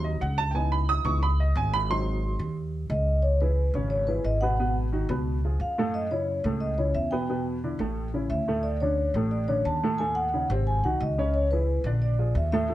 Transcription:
Already playing: upright bass D#2, upright piano F#3 C4 D#4
0.04 upright piano D#5
0.21 upright bass C#2, upright piano F#5
0.38 upright piano A5
0.51 upright piano E3 B3 G5
0.55 upright piano D#4 G#5
0.72 upright piano B5
0.89 upright piano D#6
1.05 upright bass C#2, upright piano E3 B3 D#4 C#6
1.23 upright piano B5
1.40 upright piano D#5
1.55 upright bass G#1, upright piano G#5
1.74 upright piano B5
1.90 upright piano F#3 C4 D#4 C6
2.39 upright bass D#2
2.90 upright bass C#2, vibraphone D#5
3.22 vibraphone C#5
3.41 upright piano E3 E4 G#4, vibraphone B4
3.74 upright bass G#1, upright piano C#3 C#4 C#5
3.90 vibraphone C#5
4.07 upright piano E3 E4 G#4, vibraphone B4
4.24 upright bass G#1, vibraphone D#5
4.41 upright piano B2 B3 B4, vibraphone F#5
4.60 upright piano B2 B3 B4
4.92 upright piano D#3 D#4 F#4
5.09 upright bass C#2, upright piano B2 B3 B4
5.45 upright piano F3 F4 G#4
5.60 upright bass F#2, vibraphone F5
5.78 upright piano A2 A3 A4
5.94 vibraphone D#5
6.11 upright piano C#3 C#4 E4, vibraphone C#5
6.44 upright bass C#2, upright piano A2 A3 A4
6.60 vibraphone D#5
6.78 upright piano C#3 C#4 E4, vibraphone C#5
6.94 upright bass E2, vibraphone E5
7.11 upright piano B2 B3 B4, vibraphone G5
7.30 upright piano B2 B3 B4
7.64 upright piano D3 D4 E4
7.79 upright bass A1, upright piano A2 A3 A4
8.14 upright piano C#3 C#4 E4
8.30 upright bass D2, vibraphone E5
8.48 upright piano A2 A3 A4
8.63 vibraphone D5
8.80 upright piano D3 C#4 D4, vibraphone C#5
9.14 upright bass A1, upright piano A2 A3 A4
9.31 vibraphone D5
9.48 upright piano D3 C#4 D4, vibraphone C#5
9.65 upright bass D#2, vibraphone A5
9.83 upright piano A2 A3 A4
9.98 upright piano A2 A3 A4, vibraphone G#5
10.15 vibraphone F#5
10.34 upright piano C#3 C#4 D#4
10.50 upright bass G#1, upright piano C3 C4 C5
10.67 vibraphone G#5
10.83 upright bass C2, upright piano D#3 D#4 F#4, vibraphone F#5
11.00 upright bass C#2, vibraphone D#5
11.18 upright piano C#3 C#4 C#5
11.34 vibraphone C#5
11.51 upright piano E3 E4 G#4, vibraphone B4
11.84 upright bass A#1, upright piano D3 D4 D5
12.02 vibraphone D5
12.19 upright piano F3 F4 G#4
12.35 upright bass D#2, vibraphone E5
12.52 upright piano A2 A3 A4, vibraphone E5
12.69 upright piano A2 A3 A4

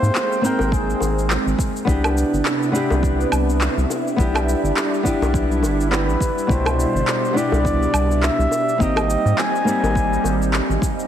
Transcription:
Already playing: analog synth pad G#3 C4 G5, nylon-string guitar A#3 C4 D#4 G4, flugelhorn C5
0.02 analog synth bass G#2, shaker
0.15 clap, shaker
0.32 shaker
0.41 nylon-string guitar A#3 C4 D#4 G5, flugelhorn A#4, shaker
0.59 analog synth bass G#1, high bongo, shaker
0.72 flugelhorn G#4, kick, shaker
0.90 shaker
1.00 analog synth bass G#1, high bongo, shaker
1.19 shaker
1.30 clap, shaker
1.46 analog synth bass G#1, shaker
1.59 kick, shaker
1.76 shaker
1.85 analog synth bass C2, analog synth pad C3 B3 D4 E4, nylon-string guitar B3 D4 E4, kick, shaker
1.89 nylon-string guitar G4
2.04 high bongo, low woodblock, shaker
2.18 shaker
2.33 analog synth bass G1, shaker
2.45 clap, shaker
2.63 shaker
2.72 nylon-string guitar B3 D4 E4, shaker
2.76 nylon-string guitar G4
2.90 analog synth bass C2, high bongo, shaker
3.03 kick, shaker
3.21 shaker
3.32 analog synth bass C2, low woodblock, shaker
3.50 shaker
3.61 clap, shaker
3.77 analog synth bass C2, shaker
3.90 high bongo, shaker
4.08 shaker
4.16 analog synth bass B1, analog synth pad G3 D4, nylon-string guitar B3 D4 E4, kick, shaker
4.21 nylon-string guitar G4
4.35 clap, high bongo, low woodblock, shaker
4.49 shaker
4.63 analog synth bass G1, shaker
4.77 clap, shaker
4.94 shaker
5.03 nylon-string guitar B3 D4 E4, kick, shaker
5.07 nylon-string guitar G4
5.21 analog synth bass B1, high bongo, shaker
5.34 kick, shaker
5.52 shaker
5.62 analog synth bass G1, high bongo, shaker
5.81 shaker
5.91 nylon-string guitar B3 D4 E4 G4, flugelhorn B4, clap, shaker
6.08 analog synth bass A1, shaker
6.20 kick, shaker
6.38 shaker
6.47 analog synth bass C2, nylon-string guitar B2 D4 E4, analog synth pad B2 G3, flugelhorn C5, kick, shaker
6.51 nylon-string guitar G4
6.66 high bongo, low woodblock, shaker
6.80 shaker
6.95 analog synth bass G1, shaker
7.08 clap, shaker
7.25 shaker
7.33 nylon-string guitar B3 D4 E4
7.37 nylon-string guitar G4, flugelhorn D5, shaker
7.52 analog synth bass C2, high bongo, shaker
7.65 kick, shaker
7.83 shaker
7.93 analog synth bass C2, low woodblock, shaker
8.11 shaker
8.23 flugelhorn E5, clap, shaker
8.39 analog synth bass C2, shaker
8.51 high bongo, shaker
8.69 shaker
8.78 analog synth bass G#1, analog synth pad G3 C4 D#4, nylon-string guitar A#3 C4 D#4, flugelhorn D#5, kick, shaker
8.82 nylon-string guitar G4
8.96 high bongo, low woodblock, shaker
9.10 shaker
9.25 analog synth bass G#2, shaker
9.38 flugelhorn G#5, clap, shaker
9.55 shaker
9.65 nylon-string guitar A#3 C4 D#4, shaker
9.69 nylon-string guitar G3
9.83 analog synth bass G#1, high bongo, shaker
9.95 kick, shaker
10.13 shaker
10.24 analog synth bass G#1, high bongo, shaker
10.42 shaker
10.53 clap, shaker
10.69 analog synth bass G#1, shaker
10.82 kick, shaker
11.00 shaker

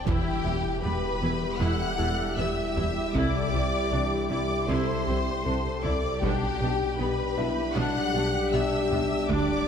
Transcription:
0.06 double bass section E1, detuned saw bass E1, analog synth bass E2, cello section E2, synth pluck E3, trombone section G3 E4, viola section E4 G4, violin section G4 G5, taiko, impact
0.45 double bass section E1, cello section E2, analog synth bass E2, synth pluck E4, viola section E4
0.83 double bass section E1, cello section E2, analog synth bass E2, synth pluck G3, viola section B3, grand piano G4, violin section B4 B5
1.22 double bass section E1, cello section E2, analog synth bass E3, synth pluck B3, viola section E4
1.60 double bass section E1, cello section E2, analog synth bass E2, synth pluck E3, viola section E4, french horn section A4, violin section F#5 F#6
1.98 double bass section E1, analog synth bass E2, cello section E2, synth pluck E4, viola section E4, grand piano A4
2.37 double bass section E1, cello section E2, analog synth bass E2, viola section B3, synth pluck E4, french horn section G4, violin section E5 E6
2.76 double bass section E1, cello section E2, analog synth bass E2, synth pluck E4, viola section E4, taiko low
3.14 detuned saw bass C2, analog synth bass C2, double bass section C2, synth pluck C3, cello section C3, viola section E4, french horn section A4, violin section D5 D6, taiko
3.51 analog synth bass C2, double bass section C2, cello section C3, synth pluck C4, viola section E4, french horn section G4
3.91 analog synth bass C2, double bass section C2, cello section C3, synth pluck E3, viola section D4, grand piano D4 D5, french horn section G4
4.30 double bass section C2, cello section C3, analog synth bass C3, synth pluck G3, viola section E4, french horn section G4, violin section D5 D6
4.68 analog synth bass C2, double bass section C2, cello section C3, synth pluck C3, viola section E4, french horn section A4, violin section C5 C6
5.05 analog synth bass C2, double bass section C2, cello section C3, synth pluck C4, viola section E4, french horn section G4
5.44 analog synth bass C2, double bass section C2, cello section C3, synth pluck C4, viola section D4, french horn section A4
5.84 double bass section C2, analog synth bass C2, cello section C3, synth pluck C4, viola section E4, violin section D5 D6, taiko low
6.21 detuned saw bass B1, double bass section B1, cello section B2, analog synth bass B2, synth pluck G3, trombone section G3 D4, viola section D4 G4, french horn section G4, violin section G4 G5, taiko
6.61 double bass section B1, analog synth bass B2, cello section B2, viola section D4, synth pluck G4
6.99 double bass section B1, cello section B2, analog synth bass B2, viola section B3, synth pluck B3, french horn section G4, violin section B4 B5
7.37 double bass section B1, cello section B2, analog synth bass B3, viola section D4, synth pluck D4, french horn section E4, grand piano E5
7.76 double bass section B1, analog synth bass B2, cello section B2, synth pluck G3, viola section D4, french horn section D4, violin section F#5 F#6
8.14 double bass section B1, analog synth bass B2, cello section B2, viola section D4, synth pluck G4, french horn section G4
8.52 double bass section B1, cello section B2, analog synth bass B2, viola section B3, synth pluck G4, violin section E5 E6
8.91 double bass section B1, cello section B2, analog synth bass B2, viola section D4, synth pluck G4, taiko low
9.29 detuned saw bass D1, double bass section D2, cello section D2, analog synth bass D2, synth pluck D3, viola section D4, french horn section G4, violin section D5 D6, taiko

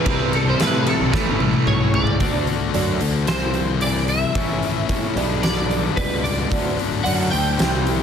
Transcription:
Already playing: string machine A4 G5, clean electric guitar B4
0.05 picked electric bass C2, distorted electric guitar C3 E3 G3 C4, string machine E5 C6, kick, crash
0.09 distorted electric guitar E4
0.33 clean electric guitar A4, crash
0.49 clean electric guitar C5
0.60 picked electric bass A2, clean electric guitar B4, snare, crash
0.86 clean electric guitar A4, crash
1.01 picked electric bass B1
1.12 picked electric bass A1, distorted electric guitar A2 E3 A3, string machine C#6, kick, snare
1.16 distorted electric guitar C#4 E4
1.27 picked electric bass G1
1.40 picked electric bass A1, high tom
1.54 high tom
1.66 picked electric bass B1, clean electric guitar C#5, mid tom
1.93 picked electric bass C#2, clean electric guitar D5, floor tom
2.07 floor tom
2.20 picked electric bass D2, steel-string acoustic guitar D3 D4 F#4, distorted electric guitar D3 A3 D4, kick, open hi-hat
2.24 distorted electric guitar F#4
2.47 steel-string acoustic guitar D3 D4, open hi-hat
2.74 picked electric bass F#2, steel-string acoustic guitar D3 D4 F#4, open hi-hat
3.01 picked electric bass D2, steel-string acoustic guitar D3 D4, open hi-hat
3.27 picked electric bass C2, distorted electric guitar C3 E3 G3 C4 E4, steel-string acoustic guitar C3 E3 G3, clean electric guitar C5, snare, open hi-hat
3.54 steel-string acoustic guitar C3 E3, open hi-hat
3.81 steel-string acoustic guitar C3 E3 G3, clean electric guitar D5, open hi-hat
4.08 steel-string acoustic guitar C3 E3, clean electric guitar E5, open hi-hat
4.34 picked electric bass A1, distorted electric guitar A2 E3 A3 C#4, steel-string acoustic guitar A2 A3 C#4, kick, open hi-hat
4.38 distorted electric guitar E4
4.63 steel-string acoustic guitar A2, open hi-hat
4.89 steel-string acoustic guitar A2 A3 C#4, kick, open hi-hat
5.16 picked electric bass B1, distorted electric guitar B2 G3 B3 D4, steel-string acoustic guitar B3 D4 G4, open hi-hat
5.43 steel-string acoustic guitar B3 D4, clean electric guitar D5, snare, open hi-hat
5.70 steel-string acoustic guitar B3 D4, open hi-hat
5.96 picked electric bass C#2, steel-string acoustic guitar B3 D4 G4, clean electric guitar B4, kick, open hi-hat
6.23 steel-string acoustic guitar B3 D4, clean electric guitar D5, open hi-hat
6.50 picked electric bass D2, distorted electric guitar D3 F#3 A3 D4, steel-string acoustic guitar D3 D4 F#4, kick, open hi-hat
6.77 steel-string acoustic guitar D3 D4, open hi-hat
7.04 picked electric bass F#2, steel-string acoustic guitar D3 D4 F#4, clean electric guitar F#5, open hi-hat
7.31 picked electric bass D2, steel-string acoustic guitar D3 D4, clean electric guitar G5, open hi-hat
7.58 picked electric bass C2, steel-string acoustic guitar C3 E3 G3, distorted electric guitar C3 G3 C4, snare, open hi-hat
7.62 distorted electric guitar E4
7.86 steel-string acoustic guitar C3 E3, open hi-hat

